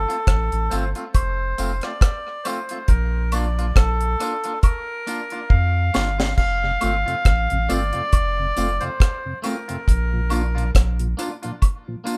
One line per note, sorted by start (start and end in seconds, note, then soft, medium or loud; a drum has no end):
0.00 0.75 A4 loud
0.08 0.16 A3 soft
0.08 0.16 C4 medium
0.08 0.16 F4 medium
0.08 closed hi-hat medium
0.27 0.50 A1 medium
0.27 kick loud
0.27 cross-stick loud
0.27 closed hi-hat medium
0.52 0.69 A1 medium
0.52 closed hi-hat soft
0.70 0.94 G1 medium
0.70 0.83 A3 medium
0.70 0.83 C4 loud
0.70 0.84 F4 loud
0.70 0.90 C5 medium
0.70 closed hi-hat medium
0.70 tambourine medium
0.95 1.04 A3 soft
0.95 1.03 C4 medium
0.95 1.03 F4 medium
0.95 closed hi-hat medium
1.14 1.54 F1 loud
1.14 1.85 C5 loud
1.14 kick loud
1.14 closed hi-hat loud
1.14 high woodblock medium
1.58 1.81 F1 medium
1.58 1.70 A3 medium
1.58 1.70 C4 loud
1.58 1.71 F4 medium
1.58 closed hi-hat medium
1.58 tambourine medium
1.81 1.91 A3 soft
1.81 1.91 C4 medium
1.81 1.90 F4 medium
1.81 2.47 D5 loud
1.81 cross-stick medium
1.81 closed hi-hat soft
2.01 kick loud
2.01 cross-stick loud
2.01 closed hi-hat medium
2.44 2.57 A3 medium
2.44 2.58 C4 medium
2.44 2.58 F4 loud
2.44 2.90 C5 medium
2.44 closed hi-hat medium
2.44 tambourine medium
2.44 high woodblock medium
2.69 2.78 A3 soft
2.69 2.78 C4 medium
2.69 2.78 F4 medium
2.69 closed hi-hat medium
2.88 3.72 A#1 loud
2.88 3.33 A#4 loud
2.88 kick loud
2.88 closed hi-hat medium
3.32 3.45 A#3 medium
3.32 3.45 D4 medium
3.32 3.46 F4 loud
3.32 3.78 D5 medium
3.32 closed hi-hat medium
3.32 tambourine medium
3.32 high woodblock medium
3.58 3.66 A#3 medium
3.58 3.65 D4 medium
3.58 3.65 F4 medium
3.58 closed hi-hat soft
3.75 4.16 A#1 medium
3.75 4.59 A4 medium
3.75 kick loud
3.75 cross-stick loud
3.75 closed hi-hat medium
4.01 closed hi-hat soft
4.20 4.32 A#3 medium
4.20 4.32 D4 medium
4.20 4.33 F4 medium
4.20 closed hi-hat medium
4.20 tambourine medium
4.44 4.52 A#3 soft
4.44 4.52 D4 medium
4.44 4.52 F4 medium
4.44 closed hi-hat medium
4.62 5.53 A#4 loud
4.62 kick loud
4.62 closed hi-hat medium
4.62 high woodblock medium
5.07 5.19 A#3 medium
5.07 5.19 D4 medium
5.07 5.20 F4 medium
5.07 closed hi-hat medium
5.07 tambourine medium
5.30 5.40 A#3 soft
5.30 5.39 D4 medium
5.30 5.39 F4 medium
5.30 closed hi-hat soft
5.49 5.90 F2 medium
5.49 6.33 F5 loud
5.49 kick loud
5.94 6.35 G1 medium
5.94 6.06 A#3 medium
5.94 6.06 D4 medium
5.94 6.07 F4 medium
5.94 snare medium
5.94 tambourine medium
5.94 high woodblock medium
6.18 6.27 A#3 soft
6.18 6.27 D4 medium
6.18 6.26 F4 medium
6.18 snare medium
6.37 6.78 F1 medium
6.37 7.72 F5 loud
6.37 kick medium
6.37 splash medium
6.63 6.71 F2 medium
6.63 6.72 C3 medium
6.81 7.05 G1 medium
6.81 6.93 A3 medium
6.81 6.94 C4 medium
6.81 6.93 C4 medium
6.81 6.93 F4 medium
6.81 6.94 F4 medium
6.81 closed hi-hat medium
6.81 tambourine medium
6.81 high woodblock medium
7.06 7.15 F2 medium
7.06 7.15 C3 medium
7.06 7.14 A3 soft
7.06 7.14 C4 medium
7.06 7.13 F4 medium
7.06 closed hi-hat soft
7.25 7.48 A1 medium
7.25 kick loud
7.25 cross-stick loud
7.25 closed hi-hat medium
7.50 7.68 A1 medium
7.50 7.59 F2 medium
7.50 7.59 C3 medium
7.50 closed hi-hat soft
7.69 7.92 G1 medium
7.69 7.81 A3 medium
7.69 7.80 A3 medium
7.69 7.81 C4 medium
7.69 7.80 C4 medium
7.69 7.80 F4 medium
7.69 7.81 F4 medium
7.69 8.84 D5 loud
7.69 closed hi-hat medium
7.69 tambourine medium
7.93 8.02 F2 medium
7.93 8.02 C3 medium
7.93 8.01 A3 soft
7.93 8.01 C4 soft
7.93 8.00 F4 medium
7.93 closed hi-hat medium
8.13 8.53 F1 loud
8.13 kick loud
8.13 closed hi-hat medium
8.13 high woodblock medium
8.39 8.47 F2 medium
8.39 8.47 C3 medium
8.56 8.79 F1 medium
8.56 8.67 A3 medium
8.56 8.68 A3 medium
8.56 8.67 C4 medium
8.56 8.69 C4 medium
8.56 8.68 F4 medium
8.56 8.69 F4 medium
8.56 closed hi-hat medium
8.56 tambourine medium
8.80 8.90 F2 medium
8.80 8.90 C3 soft
8.80 8.89 A3 soft
8.80 8.88 C4 soft
8.80 8.88 F4 medium
8.80 9.39 C5 medium
8.80 closed hi-hat soft
9.00 kick loud
9.00 cross-stick loud
9.00 closed hi-hat medium
9.26 9.34 F2 medium
9.26 9.34 C3 medium
9.42 9.55 A3 medium
9.42 9.56 C4 medium
9.42 9.55 C4 medium
9.42 9.56 F4 medium
9.42 10.71 A#4 medium
9.42 closed hi-hat medium
9.42 tambourine medium
9.42 high woodblock medium
9.68 9.77 F2 medium
9.68 9.77 C3 medium
9.68 9.76 A3 medium
9.68 9.76 C4 medium
9.68 9.75 F4 medium
9.68 closed hi-hat medium
9.88 10.71 A#1 loud
9.88 kick loud
9.88 closed hi-hat medium
10.13 10.21 A#2 medium
10.13 10.21 F3 medium
10.30 10.42 A#3 medium
10.30 10.43 D4 medium
10.30 10.42 D4 medium
10.30 10.43 F4 medium
10.30 closed hi-hat medium
10.30 tambourine medium
10.30 high woodblock medium
10.55 10.65 A#2 medium
10.55 10.64 F3 medium
10.55 10.63 A#3 medium
10.55 10.63 D4 medium
10.55 10.62 F4 medium
10.55 closed hi-hat medium
10.75 11.15 A#1 medium
10.75 kick loud
10.75 cross-stick loud
10.75 closed hi-hat medium
10.99 11.08 A#2 medium
10.99 11.08 F3 medium
10.99 closed hi-hat medium
11.17 11.30 A#3 medium
11.17 11.29 A#3 medium
11.17 11.30 D4 medium
11.17 11.31 F4 medium
11.17 11.30 F4 medium
11.17 closed hi-hat medium
11.17 tambourine medium
11.43 11.52 A#2 medium
11.43 11.52 F3 medium
11.43 11.51 A#3 soft
11.43 11.50 D4 medium
11.43 11.50 F4 medium
11.43 closed hi-hat medium
11.62 kick loud
11.62 closed hi-hat medium
11.62 high woodblock medium
11.88 11.96 A#2 medium
11.88 11.96 F3 medium
12.04 12.17 A#3 medium
12.04 12.17 D4 medium
12.04 12.17 F4 loud
12.04 12.17 F4 medium
12.04 closed hi-hat medium
12.04 tambourine medium